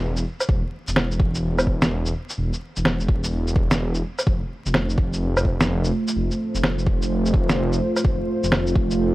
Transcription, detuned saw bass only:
Already playing: E1
0.49 E1
0.88 E1
1.20 E1
2.38 E1
2.77 E1
3.09 E1
4.27 F1
4.66 F1
4.98 F1
6.16 F1
6.55 F1
6.87 F1
8.05 F1
8.43 F1
8.76 F1

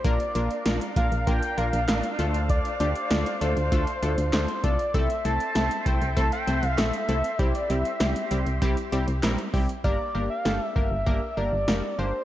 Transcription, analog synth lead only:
0.05 D5
0.97 F5
1.27 G5
1.58 F5
2.50 D5
2.80 D5
3.41 C5
4.33 C5
4.64 D5
4.94 E5
5.25 A5
5.86 G5
6.17 A5
6.32 G5
6.67 F5
6.78 E5
7.39 C5
7.55 D5
7.70 E5
9.84 D5
10.30 F5
10.62 E5
10.76 E5
11.37 D5
11.99 C5

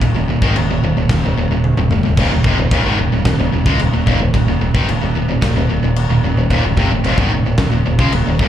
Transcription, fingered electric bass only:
0.01 D#1
0.16 D#1
0.29 D#1
0.42 G#1
0.56 D#1
0.70 D#1
0.83 D#1
0.97 D#1
1.09 D#1
1.25 D#1
1.38 D#1
1.50 D#1
1.77 D#1
1.91 D#1
2.05 D#1
2.18 D#1
2.32 D#1
2.45 F1
2.59 D#1
2.71 D#1
2.86 G#1
2.99 D#1
3.12 D#1
3.25 D#1
3.39 D#1
3.53 D#1
3.66 C#2
3.79 D#1
3.92 D#1
4.07 D#1
4.20 D#1
4.34 D#1
4.47 D#1
4.61 D#1
4.74 G#1
4.88 D#1
5.02 D#1
5.15 D#1
5.29 D#1
5.42 D#1
5.57 D#1
5.71 D#1
5.83 D#1
6.10 D#1
6.23 D#1
6.37 D#1
6.50 D#1
6.64 D#1
6.77 F1
6.91 D#1
7.05 D#1
7.18 G#1
7.32 D#1
7.45 D#1
7.58 D#1
7.72 D#1
7.86 D#1
7.99 C#2
8.13 D#1
8.26 D#1
8.39 D#1

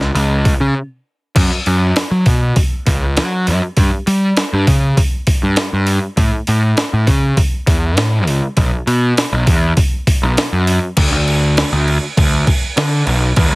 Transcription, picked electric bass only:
0.15 C#2
0.60 C#3
1.36 F#2
1.67 F#2
2.11 F#3
2.27 B2
2.87 C#2
3.18 F#3
3.48 F#2
3.77 G2
4.07 G3
4.53 G2
4.68 C#3
5.43 G2
5.73 G2
6.17 A2
6.48 A2
6.93 A2
7.07 C#3
7.67 E2
7.98 A2
8.27 C#2
8.57 B1
8.87 B2
9.32 B1
9.47 E2
10.23 B1
10.52 F#2
10.97 D2
11.12 D2
11.72 D2
12.18 D2
12.77 D3
13.07 B1
13.37 E2

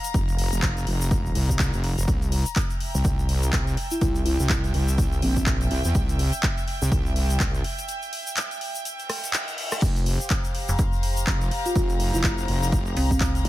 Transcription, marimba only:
3.91 E4
4.01 E4
4.26 E4
5.22 C4
11.66 F4
11.76 F4
12.14 E4
12.97 C4
13.11 C4

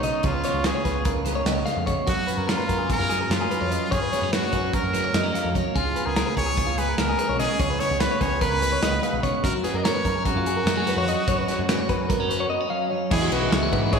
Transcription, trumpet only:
Already playing: D#4
0.24 F4
0.66 G#4
2.09 F#4
2.50 F4
2.92 A#4
3.31 F4
3.92 G#4
4.33 F#4
4.74 A#4
5.76 F4
6.06 G#4
6.37 C#5
6.78 B4
6.99 A#4
7.40 G#4
7.80 C#5
8.00 B4
8.22 C#5
8.42 B4
9.44 A#4
9.63 G#4
9.78 D#5
9.84 C#5
10.26 F#4
13.12 G#4
13.33 F#4
13.93 G#4

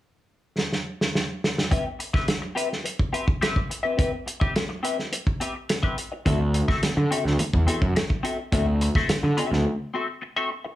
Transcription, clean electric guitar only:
1.71 C4 G4 B4 E5
1.85 muted clean electric guitar stroke
1.99 muted clean electric guitar stroke
2.13 C4 G4 B4 E5
2.27 muted clean electric guitar stroke
2.42 muted clean electric guitar stroke
2.55 C4 G4 B4 E5
2.70 muted clean electric guitar stroke
2.84 muted clean electric guitar stroke
3.13 C4 G4 B4 E5
3.27 muted clean electric guitar stroke
3.41 C4 G4 B4 E5
3.70 muted clean electric guitar stroke
3.83 C4 G4 B4 E5
3.97 C4 G4 B4 E5
4.12 muted clean electric guitar stroke
4.26 muted clean electric guitar stroke
4.40 C4 G4 B4 E5
4.55 muted clean electric guitar stroke
4.69 muted clean electric guitar stroke
4.83 C4 G4 B4 E5
4.98 muted clean electric guitar stroke
5.12 muted clean electric guitar stroke
5.40 C4 G4 B4 E5
5.55 muted clean electric guitar stroke
5.69 muted clean electric guitar stroke
5.83 C4 G4 B4 E5
5.98 muted clean electric guitar stroke
6.12 muted clean electric guitar stroke
6.25 C4 F#4 A4 E5
6.40 muted clean electric guitar stroke
6.54 muted clean electric guitar stroke
6.68 C4 F#4 A4 E5
6.82 muted clean electric guitar stroke
6.97 muted clean electric guitar stroke
7.11 C4 F#4 A4 E5
7.25 muted clean electric guitar stroke
7.39 muted clean electric guitar stroke
7.67 C4 F#4 A4 E5
7.95 muted clean electric guitar stroke
8.23 C4 F#4 A4 E5
8.39 muted clean electric guitar stroke
8.53 C4 F#4 A4 E5
8.67 muted clean electric guitar stroke
8.81 muted clean electric guitar stroke
8.96 C4 F#4 A4 E5
9.24 muted clean electric guitar stroke
9.37 C4 F#4 A4 E5
9.52 muted clean electric guitar stroke
9.65 muted clean electric guitar stroke
9.94 C4 F#4 A4 E5
10.08 muted clean electric guitar stroke
10.22 muted clean electric guitar stroke
10.36 C4 F#4 A4 E5
10.50 muted clean electric guitar stroke
10.64 muted clean electric guitar stroke

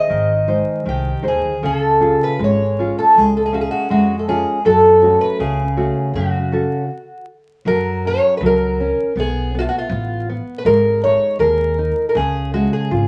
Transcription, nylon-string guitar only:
Already playing: D#4 G#4 C5
0.09 D#3
0.48 G#3 D#4 C5
0.85 D#3
1.22 D#4 G#4 C5
1.63 C#3
2.00 C#4 F4 G#4
2.39 G#3
2.79 C#4 F4 G#4
3.17 G#3
3.53 C#4 G#4 F5
3.90 G#3
4.28 C#4 F4 G#4
4.65 F#3
5.02 A3 C#4 F#4
5.40 C#3
5.77 A3 C#4 F#4
6.16 C#3
6.52 C#4 F#4 A4
7.66 F#3
8.05 C#4
8.42 F#3
8.80 C#4
9.17 B3
9.55 B3
9.92 B3
10.29 B3
10.66 G#3
11.04 D#4
11.41 G#4
11.79 D#4
12.15 C#3
12.54 G#3
12.91 F4

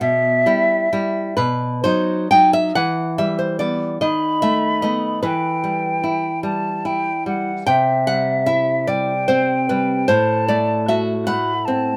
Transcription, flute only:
0.02 E5
4.02 B5
5.25 G5
6.44 A5
6.86 G5
7.27 F#5
7.67 E5
8.89 G5
10.09 A5
11.27 B5
11.65 A5

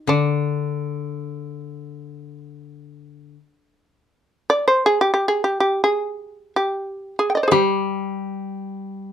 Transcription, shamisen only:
0.09 D4
1.27 C#4
1.55 C4
4.50 D5
4.68 C5
4.86 G#4
5.01 G4
5.14 G4
5.28 G#4
5.44 G4
5.60 G4
5.84 G#4
6.56 G4
7.19 G#4
7.30 G5
7.35 D5 D#5
7.43 C5
7.48 G#4
7.52 G4

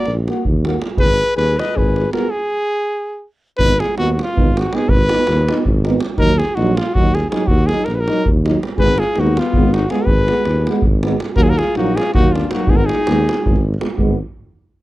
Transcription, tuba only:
0.07 A#1
0.47 D#2
0.98 G#1
1.37 D#2
1.76 G#1
3.59 G#1
3.98 D#2
4.37 G#1
4.87 G#1
5.28 D#2
5.67 G#1
6.20 D#2
6.57 A#1
6.95 D#2
7.50 D#2
7.87 A#1
8.26 D#2
8.79 G#1
9.17 D#2
9.55 G#1
10.07 G#1
10.45 D#2
10.84 G#1
11.37 D#2
11.76 A#1
12.15 D#2
12.67 G#1
13.07 D#2
13.46 G#1
13.99 G#1

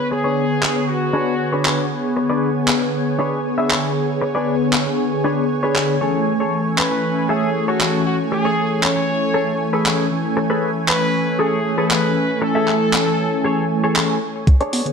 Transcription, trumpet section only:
0.12 G#4
0.88 F#4
6.78 B4
7.29 G#4
7.68 F#4
8.06 F#4
8.32 G#4
8.83 C#5
10.88 B4
11.40 G#4
11.91 B4
12.42 A4

